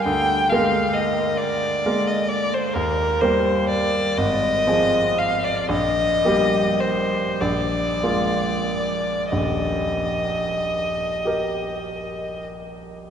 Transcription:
0.04 0.49 D2 medium
0.04 0.51 G5 medium
0.49 1.81 G#3 soft
0.49 1.81 A#3 soft
0.49 1.82 A#4 soft
0.49 0.95 F5 medium
0.93 1.39 D#5 medium
1.38 2.09 D5 medium
1.86 2.72 G#3 soft
1.86 2.72 A#3 soft
1.86 2.72 A#4 soft
2.08 2.30 D#5 medium
2.29 2.55 D5 medium
2.54 2.75 C5 medium
2.74 3.20 D#2 medium
2.74 3.22 A#4 medium
3.20 4.14 G3 soft
3.20 4.14 A#3 soft
3.20 4.14 A#4 soft
3.20 3.68 C5 medium
3.69 4.19 D5 medium
4.17 4.65 G#1 soft
4.17 5.20 D#5 medium
4.67 5.65 F3 soft
4.67 5.65 C4 soft
4.67 5.66 G#4 soft
5.18 5.45 F5 medium
5.44 5.69 D5 medium
5.69 6.22 A#1 medium
5.69 6.82 D#5 medium
6.25 7.37 G3 soft
6.25 7.36 A#3 soft
6.25 7.37 G4 soft
6.80 7.42 C5 medium
7.41 8.01 A#1 soft
7.41 9.30 D5 medium
8.03 9.29 G#3 soft
8.03 9.30 A#3 soft
8.03 9.30 F4 soft
9.31 12.47 D#1 soft
9.31 12.46 A#1 soft
9.31 12.45 D#5 medium
11.25 13.10 G4 soft
11.25 13.10 A#4 soft
11.25 13.10 D#5 soft

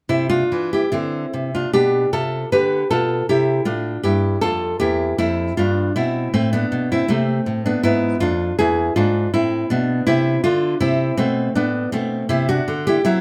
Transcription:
0.09 0.42 C3 medium
0.09 0.29 C4 medium
0.09 0.29 E4 medium
0.30 0.69 D4 medium
0.30 0.69 F4 medium
0.52 0.84 E3 medium
0.73 0.91 E4 medium
0.73 0.92 G4 medium
0.92 1.25 D3 medium
0.92 1.49 C4 medium
0.92 1.50 E4 medium
1.34 1.65 C3 medium
1.55 1.73 D4 medium
1.55 1.73 F4 medium
1.73 2.05 B2 medium
1.73 2.10 D4 medium
1.73 2.10 G4 medium
2.13 2.44 C3 medium
2.13 2.49 F4 medium
2.13 2.50 A4 medium
2.52 2.83 D3 medium
2.52 2.88 G4 medium
2.52 2.89 B4 medium
2.91 3.21 B2 medium
2.91 3.26 F4 medium
2.91 3.27 A4 medium
3.29 3.59 C3 medium
3.29 3.64 E4 medium
3.29 3.65 G4 medium
3.65 3.96 A2 medium
3.65 4.01 D4 medium
3.65 4.02 F4 medium
4.03 4.35 G2 medium
4.03 4.40 E4 medium
4.03 4.41 G4 medium
4.41 4.73 F2 medium
4.41 4.79 F4 medium
4.41 4.79 A4 medium
4.80 5.12 E2 medium
4.80 5.17 E4 medium
4.80 5.17 G4 medium
5.18 5.50 F2 medium
5.18 5.56 C4 medium
5.18 5.56 E4 medium
5.57 5.89 G2 medium
5.57 5.94 D4 medium
5.57 5.95 F4 medium
5.96 6.27 B2 medium
5.96 6.32 C4 medium
5.96 6.33 E4 medium
6.34 6.64 A2 medium
6.34 6.52 A3 medium
6.34 6.52 C4 medium
6.53 6.88 B3 medium
6.53 6.89 D4 medium
6.72 7.02 B2 medium
6.92 7.07 C4 medium
6.92 7.10 E4 medium
7.08 7.39 C3 medium
7.08 7.61 A3 medium
7.08 7.62 C4 medium
7.46 7.76 A2 medium
7.66 7.83 B3 medium
7.66 7.84 D4 medium
7.83 8.14 G#2 medium
7.83 8.19 B3 medium
7.83 8.19 E4 medium
8.20 8.51 F2 medium
8.20 8.56 D4 medium
8.20 8.56 F4 medium
8.59 8.89 E2 medium
8.59 8.94 E4 medium
8.59 8.94 G#4 medium
8.96 9.26 G#2 medium
8.96 9.31 D4 medium
8.96 9.31 F4 medium
9.34 9.63 A2 medium
9.34 9.68 C4 medium
9.34 9.69 E4 medium
9.70 10.00 B2 medium
9.70 10.05 B3 medium
9.70 10.05 D4 medium
10.07 10.37 C3 medium
10.07 10.42 C4 medium
10.07 10.42 E4 medium
10.44 10.74 D3 medium
10.44 10.79 D4 medium
10.44 10.79 F4 medium
10.80 11.10 C3 medium
10.80 11.16 C4 medium
10.80 11.16 E4 medium
11.17 11.48 B2 medium
11.17 11.53 A3 medium
11.17 11.53 C4 medium
11.55 11.85 A2 medium
11.55 11.90 B3 medium
11.55 11.91 D4 medium
11.92 12.22 B2 medium
11.92 12.27 A3 medium
11.92 12.28 C4 medium
12.29 12.59 C3 medium
12.29 12.47 C4 medium
12.29 12.48 E4 loud
12.49 12.84 D4 medium
12.49 12.85 F#4 medium
12.68 12.98 D3 medium
12.87 13.03 E4 medium
12.87 13.05 G4 medium
13.05 13.21 F#3 medium
13.05 13.21 C4 medium
13.05 13.21 E4 loud

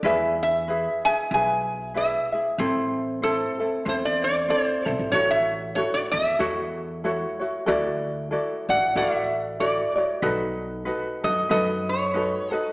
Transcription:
0.03 0.86 E2 loud
0.03 0.68 E4 loud
0.03 0.68 G#4 loud
0.03 0.66 B4 loud
0.03 0.70 E5 loud
0.43 1.07 E5 medium
0.68 1.05 E4 medium
0.68 1.06 G#4 medium
0.68 1.04 B4 medium
0.68 1.05 E5 medium
1.05 1.32 E4 soft
1.05 1.32 G#4 soft
1.05 1.32 E5 medium
1.05 1.32 G#5 medium
1.31 2.14 B1 medium
1.31 1.95 E4 medium
1.31 1.95 G#4 medium
1.31 1.93 B4 medium
1.31 1.96 E5 medium
1.31 1.98 G#5 medium
1.94 2.32 E4 medium
1.94 2.32 G#4 medium
1.94 2.31 B4 medium
1.94 2.31 E5 medium
1.94 2.43 E5 medium
2.32 2.59 E4 soft
2.32 2.59 G#4 soft
2.32 2.59 E5 medium
2.58 3.41 A1 medium
2.58 3.22 C4 medium
2.58 3.23 E4 loud
2.58 3.24 A4 medium
2.58 3.21 C5 medium
3.22 3.59 C4 medium
3.22 3.59 E4 medium
3.22 3.88 A4 medium
3.22 3.58 A4 medium
3.22 3.59 C5 medium
3.59 3.85 C4 soft
3.59 3.86 E4 soft
3.59 3.86 A4 soft
3.85 4.51 E2 medium
3.85 4.48 C4 medium
3.85 4.49 E4 medium
3.85 4.50 A4 medium
3.85 4.47 C5 medium
3.85 3.94 C5 medium
4.05 4.23 D5 medium
4.24 4.89 D5 medium
4.48 4.86 C4 medium
4.48 4.85 E4 medium
4.48 4.84 A4 medium
4.48 4.86 C5 medium
4.48 4.89 C5 medium
4.85 4.98 B1 medium
4.85 5.14 C4 soft
4.85 5.12 E4 medium
4.85 5.12 A4 medium
4.85 5.17 C5 medium
4.99 5.12 A1 medium
5.12 5.79 A1 medium
5.12 5.76 E4 medium
5.12 5.77 F#4 loud
5.12 5.76 A4 medium
5.12 5.32 C#5 medium
5.12 5.77 C#5 medium
5.31 5.78 E5 loud
5.75 6.39 E4 medium
5.75 6.39 F#4 medium
5.75 6.39 A4 medium
5.75 5.94 C#5 medium
5.75 6.39 C#5 medium
5.94 5.99 D5 medium
6.12 6.31 E2 medium
6.12 7.36 E5 loud
6.39 7.23 E2 medium
6.39 7.04 E4 medium
6.39 7.05 F#4 medium
6.39 7.04 A4 medium
6.39 7.04 C#5 medium
7.04 7.41 E4 medium
7.04 7.40 F#4 medium
7.04 7.41 A4 medium
7.04 7.38 C#5 medium
7.40 7.66 E4 soft
7.40 7.66 F#4 medium
7.40 7.67 C#5 medium
7.66 8.34 D2 medium
7.66 8.30 E4 medium
7.66 8.32 F#4 medium
7.66 8.30 A4 medium
7.66 8.31 D5 loud
8.31 8.69 E4 medium
8.31 8.69 F#4 medium
8.31 8.68 A4 medium
8.31 8.68 D5 medium
8.69 8.86 A1 medium
8.69 8.95 E4 soft
8.69 8.95 F#4 soft
8.69 8.95 D5 soft
8.69 8.97 F#5 medium
8.95 9.79 A1 medium
8.95 9.59 E4 medium
8.95 9.61 F#4 medium
8.95 9.59 A4 medium
8.95 9.60 D5 loud
8.95 9.60 E5 medium
9.60 9.96 E4 medium
9.60 9.95 F#4 medium
9.60 9.95 A4 medium
9.60 9.95 D5 medium
9.60 9.94 D5 medium
9.95 10.22 E4 soft
9.95 10.22 F#4 medium
9.95 10.07 C#5 medium
9.95 10.23 D5 medium
10.22 10.88 B1 loud
10.22 10.85 D#4 medium
10.22 10.85 F#4 loud
10.22 10.86 A4 medium
10.22 10.85 B4 medium
10.85 11.24 D#4 medium
10.85 11.23 F#4 medium
10.85 11.22 A4 medium
10.85 11.23 B4 medium
11.23 11.41 F#2 medium
11.23 11.49 D#4 soft
11.23 11.49 F#4 soft
11.23 11.49 A4 medium
11.23 11.50 D#5 medium
11.49 12.34 F#2 medium
11.49 12.13 D#4 medium
11.49 12.14 F#4 medium
11.49 12.15 A4 medium
11.49 12.13 B4 medium
11.49 11.89 D#5 medium
11.89 12.55 C#5 medium
12.14 12.52 D#4 medium
12.14 12.51 F#4 medium
12.14 12.50 A4 medium
12.14 12.51 B4 medium
12.51 12.73 D#4 soft
12.51 12.73 F#4 soft
12.51 12.73 A4 soft
12.55 12.73 B4 medium

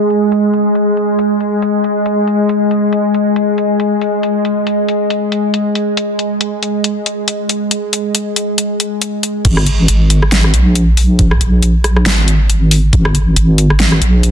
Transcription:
0.00 9.50 G#3 medium
0.10 closed hi-hat medium
0.32 closed hi-hat medium
0.54 closed hi-hat soft
0.75 closed hi-hat medium
0.97 closed hi-hat soft
1.19 closed hi-hat medium
1.41 closed hi-hat soft
1.62 closed hi-hat medium
1.84 closed hi-hat soft
2.06 closed hi-hat medium
2.27 closed hi-hat soft
2.49 closed hi-hat medium
2.71 closed hi-hat soft
2.93 closed hi-hat medium
3.14 closed hi-hat soft
3.36 closed hi-hat medium
3.58 closed hi-hat soft
3.80 closed hi-hat medium
4.01 closed hi-hat soft
4.23 closed hi-hat medium
4.45 closed hi-hat soft
4.67 closed hi-hat medium
4.89 closed hi-hat soft
5.10 closed hi-hat medium
5.32 closed hi-hat soft
5.54 closed hi-hat medium
5.75 closed hi-hat soft
5.97 closed hi-hat medium
6.19 closed hi-hat soft
6.41 closed hi-hat medium
6.63 closed hi-hat soft
6.84 closed hi-hat medium
7.06 closed hi-hat soft
7.28 closed hi-hat medium
7.49 closed hi-hat soft
7.71 closed hi-hat medium
7.93 closed hi-hat medium
8.15 closed hi-hat medium
8.36 closed hi-hat soft
8.58 closed hi-hat medium
8.80 closed hi-hat medium
9.02 closed hi-hat medium
9.23 closed hi-hat medium
9.45 9.87 G#1 loud
9.45 kick loud
9.45 closed hi-hat medium
9.45 crash loud
9.57 cross-stick medium
9.66 closed hi-hat medium
9.88 10.52 G#1 loud
9.88 closed hi-hat medium
10.10 closed hi-hat medium
10.22 cross-stick medium
10.32 snare loud
10.32 closed hi-hat medium
10.44 cross-stick medium
10.54 11.39 A#1 loud
10.54 closed hi-hat medium
10.75 closed hi-hat medium
10.97 open hi-hat loud
11.19 kick loud
11.19 closed hi-hat medium
11.31 cross-stick medium
11.41 12.04 A#1 loud
11.41 closed hi-hat medium
11.63 closed hi-hat medium
11.84 cross-stick medium
11.84 closed hi-hat medium
11.97 cross-stick medium
12.06 12.91 G#1 loud
12.06 snare loud
12.06 closed hi-hat medium
12.28 closed hi-hat medium
12.50 closed hi-hat medium
12.71 open hi-hat medium
12.93 13.35 G#1 loud
12.93 kick loud
12.93 closed hi-hat medium
13.05 cross-stick medium
13.15 closed hi-hat medium
13.36 14.00 G#1 loud
13.36 closed hi-hat medium
13.58 closed hi-hat medium
13.70 cross-stick medium
13.80 snare loud
13.80 closed hi-hat medium
13.92 cross-stick medium
14.01 14.31 A#1 loud
14.01 closed hi-hat medium
14.23 closed hi-hat medium

